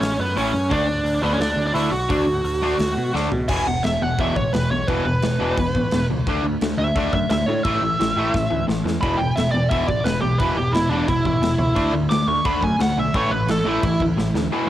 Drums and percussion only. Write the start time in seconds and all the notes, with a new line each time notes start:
0.02 snare, open hi-hat
0.37 open hi-hat
0.71 kick, open hi-hat
1.06 open hi-hat
1.41 snare, open hi-hat
1.75 open hi-hat
2.10 kick, open hi-hat
2.45 open hi-hat
2.79 snare, open hi-hat
3.15 snare
3.32 floor tom
3.48 kick, crash
3.84 snare, crash
4.18 kick, crash
4.36 kick
4.54 snare, crash
4.88 kick, crash
5.22 snare, crash
5.57 kick, crash
5.75 kick
5.91 snare, crash
6.27 kick, crash
6.61 snare, crash
6.96 kick, crash
7.13 kick
7.30 snare, crash
7.65 kick, crash
8.00 snare, crash
8.34 kick, snare
8.69 snare
8.87 snare
9.03 kick, crash
9.37 snare, crash
9.71 kick, crash
9.88 kick
10.05 snare, crash
10.40 kick, crash
10.75 snare, crash
11.08 kick, crash
11.25 kick
11.43 snare, crash
11.76 kick, crash
12.11 snare, crash
12.45 kick, crash
12.63 kick
12.80 snare, crash
13.14 kick, crash
13.48 snare, crash
13.83 kick, crash
14.00 kick
14.18 snare
14.35 snare